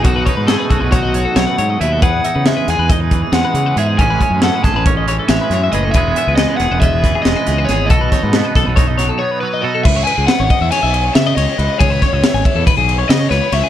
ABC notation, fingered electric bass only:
X:1
M:9/8
L:1/16
Q:3/8=92
K:C#m
V:1 name="Fingered electric bass" clef=bass
B,,,2 z G,,2 z B,,, B,,,4- B,,, B,,, z G,,2 D,,2 | E,,2 z C,2 z E,, E,,4- E,, E,, z C,2 G,,2 | A,,,2 z F,,2 z A,,, A,,,4- A,,, A,,, z F,,2 F,,,2 | E,,,2 z C,,2 z E,,, E,,,4- E,,, E,,, z C,,2 G,,,2 |
B,,,2 z G,,2 z B,,, B,,,4- B,,, z6 | C,,2 z C,, z G,,, z E,, z B,,,3 C,2 C,, z C,, z | C,,2 z C,, z G,,, z E,, z B,,,3 C,2 C,, z C,, z |]